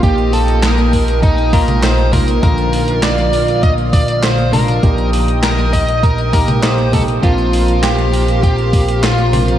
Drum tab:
HH |xxoxxxoxxxoxxxox|xxoxxxoxxxoxxxox|xxoxxxoxxxoxxxox|xxoxxxoxxxoxxxox|
CP |----x-------x---|----x-------x---|----x-------x---|----x-------x---|
SD |----o-------o---|----o-------o---|----o-------o---|----o-------o---|
T2 |-----------o--o-|--------------o-|-----------o--o-|--------------o-|
BD |o-----o-o-o---o-|o-------o-o-----|o-----o-o-o---o-|o-------o-o-----|